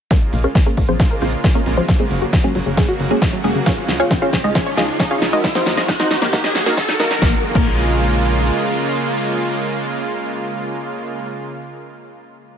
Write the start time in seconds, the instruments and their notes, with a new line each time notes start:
0.11 supersaw synth C#3 G#3 A#3 F4, synth arpeggio sound A#3, synth pluck C#4 G#4 A#4 C#5, kick, snare, closed hi-hat, riser
0.22 supersaw synth C#3 G#3 A#3 F4, synth arpeggio sound D#4
0.33 analog synth bass A#1, synth arpeggio sound A#2, open hi-hat
0.44 synth pluck C#4 G#4 A#4 C#5, synth arpeggio sound A#4, closed hi-hat
0.55 synth arpeggio sound A#3, kick, snare, closed hi-hat
0.66 synth arpeggio sound A#3, synth pluck C#4 G#4 A#4 C#5, closed hi-hat
0.77 analog synth bass A#1, supersaw synth C#3 G#3 A#3 F4, synth arpeggio sound A#3, kick, open hi-hat
0.88 analog synth bass A#1, supersaw synth C#3 G#3 A#3 F4, synth arpeggio sound F3, synth pluck C4 F4 G#4 C5, closed hi-hat
1.00 kick, snare, closed hi-hat
1.11 supersaw synth C#3 G#3 A#3 F4, synth arpeggio sound A#4
1.22 analog synth bass A#1, synth arpeggio sound F3, synth pluck C4 F4 G#4 C5, open hi-hat
1.33 closed hi-hat
1.44 supersaw synth C#3 G#3 A#3 F4, synth arpeggio sound A#3, kick, snare, closed hi-hat
1.55 synth arpeggio sound A#3, synth pluck C#4 G#4 A#4 C#5
1.66 analog synth bass A#1, supersaw synth C#3 G#3 A#3 F4, synth arpeggio sound C4, open hi-hat
1.77 synth arpeggio sound F3, synth pluck C4 C#4 F#4 C5, closed hi-hat
1.88 supersaw synth C#3 F#3 A#3 F#4, synth arpeggio sound F#3, kick, snare, closed hi-hat
2.00 supersaw synth C#3 F#3 A#3 F#4, synth pluck G#3 A#3 C#4 G#4, synth arpeggio sound C4
2.11 analog synth bass F#1, synth arpeggio sound F#2, open hi-hat
2.22 synth arpeggio sound F#4, closed hi-hat
2.33 synth arpeggio sound F#3, kick, snare, closed hi-hat
2.44 synth arpeggio sound F#3, synth pluck G#3 A#3 C#4 G#4, closed hi-hat
2.55 analog synth bass F#1, supersaw synth C#3 F#3 A#3 F#4, synth arpeggio sound F#3, open hi-hat
2.66 analog synth bass F#1, synth arpeggio sound C#3, supersaw synth C#3 F#3 A#3 F#4, closed hi-hat
2.77 synth pluck G#3 A#3 C#4 G#4, kick, snare, closed hi-hat
2.88 supersaw synth C#3 F#3 A#3 F#4, synth arpeggio sound F#4
3.00 analog synth bass F#1, synth arpeggio sound C#3, open hi-hat
3.11 synth pluck G#3 A#3 C#4 G#4, closed hi-hat
3.22 supersaw synth C#3 F#3 A#3 F#4, synth arpeggio sound F#3, kick, snare, closed hi-hat
3.33 synth arpeggio sound F#3
3.44 analog synth bass F#1, supersaw synth C#3 F#3 A#3 F#4, synth arpeggio sound G#3, synth pluck G#3 A#3 C#4 G#4, open hi-hat
3.55 synth arpeggio sound C#3, closed hi-hat
3.66 supersaw synth C#3 F3 G#3 F4, synth arpeggio sound C#4, synth pluck F4 G#4 C#5 F5, kick, snare, closed hi-hat
3.77 supersaw synth C#3 F3 G#3 F4, synth arpeggio sound F4
3.88 analog synth bass C#2, synth arpeggio sound C#3, snare, open hi-hat
4.00 synth pluck F4 G#4 C#5 F5, synth arpeggio sound C#5, closed hi-hat
4.11 synth arpeggio sound C#4, kick, snare, closed hi-hat
4.22 synth arpeggio sound C#4, synth pluck F4 G#4 C#5 F5, closed hi-hat
4.33 analog synth bass C#2, supersaw synth C#3 F3 G#3 F4, synth arpeggio sound C#4, kick, snare, open hi-hat
4.44 analog synth bass C#2, supersaw synth C#3 F3 G#3 F4, synth arpeggio sound G#3, synth pluck D#4 F4 G#4 D#5, closed hi-hat
4.55 kick, snare, closed hi-hat
4.66 supersaw synth C#3 F3 G#3 F4, synth arpeggio sound C#5
4.77 analog synth bass C#2, synth arpeggio sound G#3, synth pluck D#4 F4 G#4 D#5, snare, open hi-hat
4.89 closed hi-hat
5.00 supersaw synth C#3 F3 G#3 F4, synth arpeggio sound C#4, kick, snare, closed hi-hat
5.11 synth arpeggio sound C#4, synth pluck F4 G#4 C#5 F5
5.22 analog synth bass C#2, supersaw synth C#3 F3 G#3 F4, synth arpeggio sound D#4, snare, open hi-hat
5.33 synth arpeggio sound G#3, synth pluck D#4 F#4 A#4 D#5, closed hi-hat
5.44 supersaw synth D#3 F#3 A#3 F#4, synth arpeggio sound D#4, kick, snare, closed hi-hat
5.55 supersaw synth D#3 F#3 A#3 F#4, synth pluck C4 D#4 F#4 C5, synth arpeggio sound G#4, snare, closed hi-hat
5.66 analog synth bass D#2, synth arpeggio sound D#3, snare, open hi-hat
5.77 synth arpeggio sound D#5, snare, closed hi-hat
5.88 synth arpeggio sound D#4, kick, snare, closed hi-hat
6.00 synth pluck C4 D#4 F#4 C5, synth arpeggio sound D#4, snare, closed hi-hat
6.11 analog synth bass D#2, supersaw synth D#3 F#3 A#3 F#4, synth arpeggio sound D#4, snare, open hi-hat
6.22 analog synth bass D#2, supersaw synth D#3 F#3 A#3 F#4, synth arpeggio sound A#3, snare, closed hi-hat
6.33 synth pluck A#3 D#4 F#4 A#4, kick, snare, closed hi-hat
6.44 supersaw synth D#3 F#3 A#3 F#4, synth arpeggio sound D#5, snare
6.55 analog synth bass D#2, synth arpeggio sound F#4, snare, open hi-hat
6.66 synth arpeggio sound A#3, synth pluck A#3 D#4 F#4 A#4, snare, closed hi-hat
6.77 supersaw synth D#3 F#3 A#3 F#4, synth arpeggio sound G#4, kick, snare, closed hi-hat
6.88 synth arpeggio sound D#4, snare
7.00 analog synth bass D#2, supersaw synth D#3 F#3 A#3 F#4, synth pluck A#3 D#4 F#4 A#4, synth arpeggio sound D#4, snare, open hi-hat
7.11 synth arpeggio sound D#4, snare, closed hi-hat
7.22 analog synth bass A#1, supersaw synth C#3 G#3 A#3 F4, synth arpeggio sound A#3, synth pluck A#4, kick, snare
7.55 analog synth bass A#1, synth arpeggio sound A#3, synth pluck A#4, kick, crash